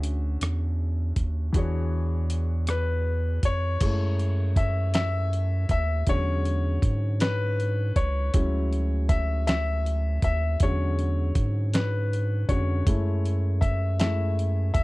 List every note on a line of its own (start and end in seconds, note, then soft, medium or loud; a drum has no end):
0.00 0.37 D2 loud
0.00 1.49 D3 medium
0.00 1.50 C#4 medium
0.00 1.51 F#4 medium
0.00 1.52 G#4 medium
0.00 1.56 D5 medium
0.00 1.53 E5 medium
0.00 closed hi-hat medium
0.41 1.13 E2 loud
0.41 cross-stick loud
0.41 closed hi-hat medium
1.16 1.51 D#2 medium
1.16 kick medium
1.16 closed hi-hat medium
1.52 3.40 E2 loud
1.52 3.76 E3 medium
1.52 3.76 D4 medium
1.52 3.77 F#4 medium
1.52 kick loud
1.52 closed hi-hat medium
1.57 3.78 G#4 medium
1.57 3.44 C#5 medium
2.30 closed hi-hat medium
2.67 3.46 B4 medium
2.67 cross-stick loud
2.67 closed hi-hat medium
3.43 3.77 F2 medium
3.43 4.53 C#5 loud
3.43 kick medium
3.43 closed hi-hat medium
3.80 5.66 F#2 loud
3.80 4.90 G#3 medium
3.80 4.91 A3 medium
3.80 4.91 E4 medium
3.80 kick loud
3.80 closed hi-hat medium
3.80 crash loud
4.19 closed hi-hat soft
4.56 4.93 E5 loud
4.56 kick medium
4.56 closed hi-hat medium
4.94 5.70 E5 loud
4.94 snare loud
4.94 closed hi-hat medium
5.33 closed hi-hat medium
5.69 6.04 D#2 loud
5.69 6.05 E5 loud
5.69 kick medium
5.69 closed hi-hat medium
6.07 6.79 E2 loud
6.07 6.58 D3 medium
6.07 6.58 F#3 medium
6.07 6.58 G#3 medium
6.07 6.58 C#4 medium
6.07 7.25 C#5 loud
6.07 kick loud
6.07 closed hi-hat medium
6.45 closed hi-hat soft
6.82 7.92 G#2 medium
6.82 kick loud
6.82 closed hi-hat medium
7.20 7.98 B4 loud
7.20 snare loud
7.20 closed hi-hat medium
7.60 closed hi-hat soft
7.96 8.30 C#2 loud
7.96 9.13 C#5 loud
7.96 kick medium
7.96 closed hi-hat medium
8.34 10.19 D2 loud
8.34 10.56 F#3 medium
8.34 10.56 G#3 medium
8.34 10.56 C#4 medium
8.34 10.56 E4 medium
8.34 kick loud
8.34 closed hi-hat medium
8.73 closed hi-hat soft
9.09 9.44 E5 loud
9.09 kick loud
9.09 closed hi-hat medium
9.47 10.23 E5 loud
9.47 snare loud
9.47 closed hi-hat medium
9.86 closed hi-hat medium
10.22 10.57 D#2 loud
10.22 10.62 E5 loud
10.22 kick medium
10.22 closed hi-hat medium
10.60 11.32 E2 medium
10.60 11.71 D3 medium
10.60 11.71 F#3 medium
10.60 11.71 G#3 medium
10.60 11.71 C#4 medium
10.60 11.71 C#5 medium
10.60 kick loud
10.60 closed hi-hat medium
10.99 closed hi-hat soft
11.35 12.45 G#2 medium
11.35 kick medium
11.35 closed hi-hat medium
11.74 12.51 B4 medium
11.74 snare loud
11.74 closed hi-hat medium
12.13 closed hi-hat soft
12.49 12.83 F2 loud
12.49 12.83 D3 medium
12.49 12.83 G#3 soft
12.49 12.83 C#4 medium
12.49 12.83 F#4 soft
12.49 13.58 C#5 medium
12.49 kick medium
12.49 closed hi-hat medium
12.87 14.72 F#2 loud
12.87 13.37 G#3 medium
12.87 13.37 A3 medium
12.87 13.37 E4 medium
12.87 kick loud
12.87 closed hi-hat medium
13.25 closed hi-hat medium
13.61 13.98 E5 medium
13.61 kick loud
13.61 closed hi-hat medium
14.00 14.34 G#3 medium
14.00 14.34 A3 medium
14.00 14.34 E4 medium
14.00 14.72 E5 loud
14.00 snare loud
14.00 closed hi-hat medium
14.39 closed hi-hat medium
14.74 14.84 D#2 medium
14.74 14.84 E5 loud
14.74 kick medium
14.74 closed hi-hat medium